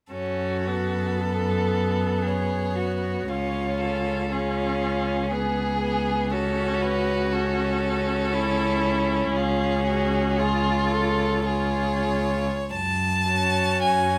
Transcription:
0.12 F#2 C#4 F#4 A4
0.68 B3
1.21 A4
2.23 G#4 C#5
2.76 F#4
3.28 C#2 C#4 F4 C#5
3.81 A4
4.31 C#4 F4 G#4
5.30 B3 G#4
5.81 B3
6.32 C#4 F#4 A4
6.82 B4
7.32 C#4 A4
8.34 E4
9.32 C#2 F4 G#4
9.87 F#4
10.38 F4 G#4 C#5
10.91 A4
11.45 F4 G#4 C#5
12.73 F#2 A5
13.30 C#4 F#4
13.83 F#2 G#5

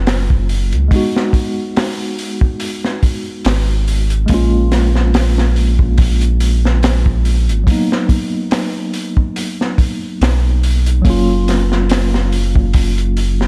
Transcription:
Already playing: F#1 F#3 A#3 C#4 F4
0.07 snare, open hi-hat
0.30 kick
0.49 open hi-hat
0.72 C#2, closed hi-hat
0.88 G#3 B3, kick, open hi-hat
0.94 D#4 F#4
1.16 snare
1.33 kick, open hi-hat
1.77 snare, open hi-hat
2.19 open hi-hat
2.41 kick
2.60 open hi-hat
2.85 snare
3.03 kick, open hi-hat
3.45 G#1, snare, open hi-hat
3.88 open hi-hat
4.10 closed hi-hat
4.26 A#1 G#3 A#3, kick, open hi-hat
4.31 C#4 F4
4.72 snare, open hi-hat
4.95 snare
5.14 snare, open hi-hat
5.38 snare
5.56 open hi-hat
5.79 kick
5.98 kick, open hi-hat
6.21 closed hi-hat
6.40 open hi-hat
6.65 snare
6.83 snare, open hi-hat
7.06 kick
7.25 open hi-hat
7.49 G#1, closed hi-hat
7.64 F#3 A#3, kick, open hi-hat
7.69 B3 D#4
7.92 snare
8.09 kick, open hi-hat
8.51 snare, open hi-hat
8.93 open hi-hat
9.17 kick
9.36 open hi-hat
9.61 snare
9.78 kick, open hi-hat
10.21 B1, snare, open hi-hat
10.63 open hi-hat
10.86 closed hi-hat
11.02 F#1 F#3 A#3, kick, open hi-hat
11.07 C#4 F4
11.48 snare, open hi-hat
11.72 snare
11.89 snare, open hi-hat
12.14 snare
12.32 open hi-hat
12.56 kick
12.73 kick, open hi-hat
12.98 closed hi-hat
13.17 open hi-hat
13.41 snare

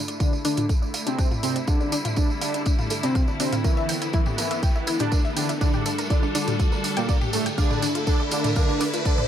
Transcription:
Already playing: D3 A3 E4, riser
0.08 D5, closed hi-hat, tambourine
0.20 D3 D4 F5, kick, closed hi-hat, tambourine
0.33 D4, tambourine
0.45 D3 D4, open hi-hat, tambourine
0.57 F4, closed hi-hat, mid tom, tambourine
0.69 A4, kick, closed hi-hat, tambourine
0.82 D5, tambourine
0.94 F5, open hi-hat, tambourine
1.07 C3 C4 D4, closed hi-hat, tambourine
1.18 D4, kick, closed hi-hat, tambourine
1.31 F4, mid tom, tambourine
1.43 C3 C4 A4, open hi-hat, tambourine
1.56 D5, closed hi-hat, tambourine
1.67 D3 G3 D4 F5, kick, closed hi-hat, tambourine
1.80 D4, tambourine
1.92 D4, open hi-hat, tambourine
2.05 F4, closed hi-hat, mid tom, tambourine
2.16 D3 D4 A4, kick, closed hi-hat, tambourine
2.30 D5, tambourine
2.41 D3 D4 F5, open hi-hat, tambourine
2.54 D4, closed hi-hat, tambourine
2.66 D4, kick, closed hi-hat, tambourine
2.78 F4, mid tom, tambourine
2.90 A4, open hi-hat, tambourine
3.03 C3 C4 D5, closed hi-hat, tambourine
3.15 F5, kick, closed hi-hat, tambourine
3.28 D4, tambourine
3.40 C3 C4 D4, open hi-hat, tambourine
3.52 F4, closed hi-hat, mid tom, tambourine
3.64 E3 B3 E4 A#4, kick, closed hi-hat, tambourine
3.77 E5, tambourine
3.89 G5, open hi-hat, tambourine
4.02 E4, closed hi-hat, tambourine
4.13 E3 E4, kick, closed hi-hat, tambourine
4.26 G4, mid tom, tambourine
4.38 E3 E4 A#4, open hi-hat, tambourine
4.51 E5, closed hi-hat, tambourine
4.63 G5, kick, closed hi-hat, tambourine
4.75 E4, tambourine
4.87 E4, open hi-hat, tambourine
4.99 D3 D4 G4, closed hi-hat, mid tom, tambourine
5.12 A#4, kick, closed hi-hat, tambourine
5.25 E5, tambourine
5.37 D3 D4 G5, open hi-hat, tambourine
5.49 E4, closed hi-hat, tambourine
5.61 D3 G3 D4 A4, kick, closed hi-hat, tambourine
5.73 G4, mid tom, tambourine
5.86 A4, open hi-hat, tambourine
5.98 A#4, closed hi-hat, tambourine
6.10 D3 D4 D5, kick, closed hi-hat, tambourine
6.23 D4, tambourine
6.35 D3 D4, open hi-hat, tambourine
6.48 G4, closed hi-hat, mid tom, tambourine
6.59 A4, kick, closed hi-hat, tambourine
6.72 A#4, tambourine
6.84 D5, open hi-hat, tambourine
6.96 A#2 A#3 G5, closed hi-hat, tambourine
7.09 D5, kick, closed hi-hat, tambourine
7.21 G4, mid tom, tambourine
7.33 A2 A3 A4, open hi-hat, tambourine
7.46 G5, closed hi-hat, tambourine
7.58 D3 A3 D4 E4 F5, kick, closed hi-hat, tambourine
7.71 D5, mid tom, tambourine
7.82 D4, open hi-hat, tambourine
7.95 F4, closed hi-hat, tambourine
8.07 D3 D4 A4, kick, closed hi-hat, tambourine
8.20 D5, tambourine
8.31 D3 D4 F5, open hi-hat, tambourine
8.44 D5, closed hi-hat, mid tom, tambourine
8.56 D3 D4 F5, kick, closed hi-hat, tambourine
8.69 D5, tambourine
8.80 D4, open hi-hat, tambourine
8.94 F4, closed hi-hat, tambourine
9.05 D3 D4 A4, kick, closed hi-hat, tambourine
9.18 D5, mid tom, tambourine

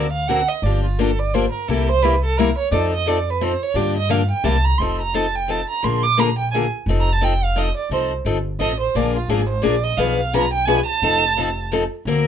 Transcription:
Already playing: D2 D5
0.13 F5
0.28 D3 A#3 C4 F#4 A#4 F#5
0.48 D#5
0.62 G1 D3 F3 A#3 D4 G4 D5
0.85 F4
0.99 D3 F3 A#3 D4 G4 A4
1.19 D5
1.34 D3 F3 A#3 D4 G4 C5
1.52 A#4
1.68 C2 C3 G3 A#3 E4 G4 A4
1.89 C5
2.02 C3 G3 A#3 E4 G4 B4
2.24 A4
2.37 C3 G3 A#3 E4 G4 A#4
2.58 C#5
2.71 F2 F3 C4 D#4 A4 D5
2.94 D#5
3.06 F3 C4 D#4 A4 D5
3.30 B4
3.41 F3 C4 D#4 A4 C5
3.63 C#5
3.74 G2 D3 F3 A#3 D4 G4 D5
3.97 D#5
4.09 D3 F3 A#3 D4 G4 F5
4.31 G5
4.44 C2 C3 G3 A#3 E4 G4 A5
4.64 A#5
4.78 F1 F3 C4 D#4 A4 C6
5.01 A#5
5.14 F3 C4 D#4 A4 A5
5.35 G5
5.48 F3 C4 D#4 A4 A5
5.70 A#5
5.83 A#1 D3 F3 A#3 D4 G#4 C6
6.03 D6
6.17 D3 F3 A#3 D4 G#4 A#5
6.38 G5
6.51 D3 F3 A#3 D4 G#5
6.56 G#4
6.86 F1 F3 C4 D#4 A4
7.00 A#5
7.12 A5
7.21 F3 C4 D#4 A4 G5
7.44 F5
7.56 F3 C4 D#4 A4 D#5
7.77 D5
7.89 C2 F3 C4 D#4 A4 C5
8.25 G1 F3 C4 D#4 A4
8.59 A1 F3 C4 D#4 A4 D#5
8.80 C5
8.95 A#1 D3 F3 A#3 D4 G#4 D5
9.16 F4
9.28 G#1 D3 F3 A#3 D4 G#4
9.49 C5
9.62 A#1 D3 F3 A#3 D4 G#4 D5
9.83 D#5
9.97 B1 B2 F3 B3 D4 G#4 B4 F5
10.33 B2 F3 B3 D4 G#4 B4 A#5
10.53 G5
10.66 B2 F3 B3 D4 G#4 B4 G#5
10.86 A5
11.02 F1 F3 C4 D#4 A4
11.37 F3 C4 D#4 A4
11.72 F3 C4 D#4 A4
12.05 D2 D3 A#3 C4 F#4 A#4

